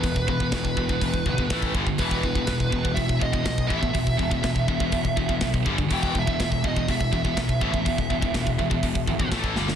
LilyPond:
<<
  \new Staff \with { instrumentName = "Lead electric guitar" } { \time 4/4 \key e \minor \tempo 4 = 123 b'8 b'2. r8 | b'2 e''8 dis''8 dis''8 e''8~ | e''2.~ e''8 r8 | g''8 e''4 dis''8 e''2~ |
e''2. r4 | }
  \new Staff \with { instrumentName = "Distorted electric guitar" } { \clef bass \time 4/4 \key e \minor <e, b,>8 <e, b,>16 <e, b,>16 <e, b,>8 <e, b,>16 <e, b,>16 <e, b,>8 <e, b,>16 <e, b,>16 <a, e a>8 <g, d g>16 <g, d>16 | <e, b, e>8 <e, b,>16 <e, b,>16 <e, b,>8 <e, b,>16 <e, b,>16 <e, b,>8 <e, b,>16 <e, b,>16 <e, b,>8 <e, b, e>16 <e, b,>16 | <e, b,>8 <e, b,>16 <e, b,>16 <e, b,>8 <e, b,>16 <e, b,>16 <e, b,>8 <e, b,>16 <e, b,>16 <e, b,>8 <g, d g>16 <g, d>16 | <e, b, e>8 <e, b,>16 <e, b,>16 <e, b,>8 <e, b,>16 <e, b,>16 <e, b,>8 <e, b,>16 <e, b,>16 <e, b,>8 <e, b, e>16 <e, b,>16 |
<e, b,>8 <e, b,>16 <e, b,>16 <e, b,>8 <e, b,>16 <e, b,>16 <e, b,>8 <e, b,>16 <e, b,>16 <a, e a>8 <g, d g>16 <g, d>16 | }
  \new Staff \with { instrumentName = "Distorted electric guitar" } { \clef bass \time 4/4 \key e \minor <e, b,>8 <e, b,>16 <e, b,>16 <e, b,>8 <e, b,>16 <e, b,>16 <e, b,>8 <e, b,>16 <e, b,>16 <a, e a>8 <g, d g>16 <g, d>16 | <e, b, e>8 <e, b,>16 <e, b,>16 <e, b,>8 <e, b,>16 <e, b,>16 <e, b,>8 <e, b,>16 <e, b,>16 <e, b,>8 <e, b, e>16 <e, b,>16 | <e, b,>8 <e, b,>16 <e, b,>16 <e, b,>8 <e, b,>16 <e, b,>16 <e, b,>8 <e, b,>16 <e, b,>16 <e, b,>8 <g, d g>16 <g, d>16 | <e, b, e>8 <e, b,>16 <e, b,>16 <e, b,>8 <e, b,>16 <e, b,>16 <e, b,>8 <e, b,>16 <e, b,>16 <e, b,>8 <e, b, e>16 <e, b,>16 |
<e, b,>8 <e, b,>16 <e, b,>16 <e, b,>8 <e, b,>16 <e, b,>16 <e, b,>8 <e, b,>16 <e, b,>16 <a, e a>8 <g, d g>16 <g, d>16 | }
  \new Staff \with { instrumentName = "Picked electric bass" } { \clef bass \time 4/4 \key e \minor e,,8 e,,8 e,,8 e,,8 e,,8 g,,8 a,,8 g,,8 | e,,8 e,,8 e,,8 e,,8 e,,8 e,,8 b,,8 a,,8 | e,,8 e,,8 e,,8 e,,8 e,,8 e,,8 b,,8 g,,8 | e,,8 e,,8 e,,8 e,,8 e,,8 e,,8 b,,8 a,,8 |
e,,8 e,,8 e,,8 e,,8 e,,8 gis,,8 a,,8 g,,8 | }
  \new DrumStaff \with { instrumentName = "Drums" } \drummode { \time 4/4 <hho bd>16 bd16 bd16 bd16 <hho bd sn>16 bd16 bd16 bd16 <hho bd>16 bd16 bd16 bd16 <hho bd sn>16 bd16 bd16 bd16 | <hho bd>16 bd16 bd16 bd16 <hho bd sn>16 bd16 bd16 bd16 <hho bd>16 bd16 bd16 bd16 <hho bd sn>16 bd16 bd16 bd16 | <hho bd>16 bd16 bd16 bd16 <hho bd sn>16 bd16 bd16 bd16 <hho bd>16 bd16 bd16 bd16 <hho bd sn>16 bd16 bd16 bd16 | <hho bd>16 bd16 bd16 bd16 <hho bd sn>16 bd16 bd16 bd16 <hho bd>16 bd16 bd16 bd16 <hho bd sn>16 bd16 bd16 bd16 |
<hho bd>16 bd16 bd16 bd16 <hho bd sn>16 bd16 bd16 bd16 <hho bd>16 bd16 bd16 bd16 <hho bd sn>16 bd16 sn16 sn16 | }
>>